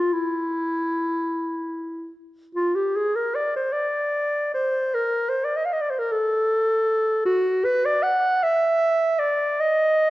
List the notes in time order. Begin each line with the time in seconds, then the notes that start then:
Already playing: F4
0.12 E4
2.55 F4
2.75 G4
2.96 G#4
3.15 A#4
3.35 D5
3.56 C5
3.73 D5
4.54 C5
4.94 A#4
5.29 C5
5.44 D5
5.56 D#5
5.65 F5
5.73 D#5
5.81 D5
5.90 C5
5.99 A#4
6.12 A4
7.25 F#4
7.64 B4
7.85 D5
8.03 F#5
8.43 E5
9.19 D5
9.60 D#5